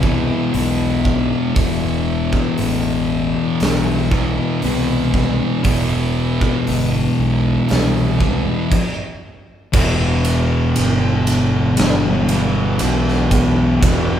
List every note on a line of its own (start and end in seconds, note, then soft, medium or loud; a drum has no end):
0.00 0.27 C2 medium
0.00 0.51 B2 medium
0.00 0.54 E3 medium
0.00 kick medium
0.05 0.52 E2 medium
0.52 1.29 B1 medium
0.52 1.54 E2 medium
0.52 1.53 B2 medium
0.52 1.57 E3 medium
0.52 open hi-hat medium
1.05 kick medium
1.54 2.32 E1 loud
1.54 4.13 E2 medium
1.54 4.09 B2 loud
1.54 4.10 E3 loud
1.54 kick loud
1.54 open hi-hat medium
2.33 kick medium
2.58 3.34 A1 medium
2.58 open hi-hat medium
3.60 4.37 B1 loud
3.60 snare loud
3.60 open hi-hat medium
4.10 4.60 E2 medium
4.10 4.60 B2 medium
4.10 4.63 E3 medium
4.10 kick medium
4.61 5.39 C2 medium
4.61 5.61 E2 medium
4.61 5.62 B2 medium
4.61 5.62 E3 medium
4.61 open hi-hat medium
5.14 kick medium
5.14 snare soft
5.63 6.40 E1 loud
5.63 8.17 E2 medium
5.63 8.17 B2 loud
5.63 8.17 E3 loud
5.63 kick loud
5.63 open hi-hat medium
6.41 kick medium
6.67 7.05 G1 medium
6.67 open hi-hat medium
7.19 7.57 B1 medium
7.69 8.45 C2 loud
7.69 snare loud
7.69 open hi-hat medium
8.19 8.69 E2 medium
8.19 8.69 B2 medium
8.19 8.68 E3 medium
8.19 kick medium
8.72 kick loud
8.72 crash medium
9.73 10.72 E1 loud
9.73 11.76 E2 medium
9.73 11.76 B2 loud
9.73 11.79 E3 loud
9.73 kick loud
9.73 crash loud
10.25 ride medium
10.76 11.75 G1 medium
10.76 ride loud
11.27 ride medium
11.77 12.77 G1 medium
11.77 13.81 E2 medium
11.77 13.80 B2 medium
11.77 13.83 E3 medium
11.77 snare loud
11.77 ride loud
12.29 12.80 E2 medium
12.29 12.78 B2 medium
12.29 12.83 E3 medium
12.29 ride medium
12.79 13.28 B1 loud
12.79 13.83 E2 medium
12.79 13.81 B2 medium
12.79 ride loud
12.84 13.86 E3 medium
13.08 snare soft
13.31 13.79 B1 medium
13.31 kick medium
13.31 ride medium
13.81 14.20 E1 loud
13.81 14.20 E2 loud
13.81 14.20 B2 loud
13.81 14.20 E3 loud
13.81 kick loud
13.81 ride loud